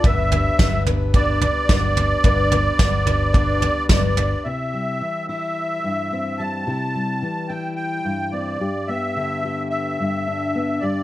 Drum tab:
SD |--o---o-|--o---o-|--------|--------|
FT |oooooooo|oooooooo|--------|--------|
BD |o-o-o-o-|o-o-o-o-|--------|--------|

SD |--------|
FT |--------|
BD |--------|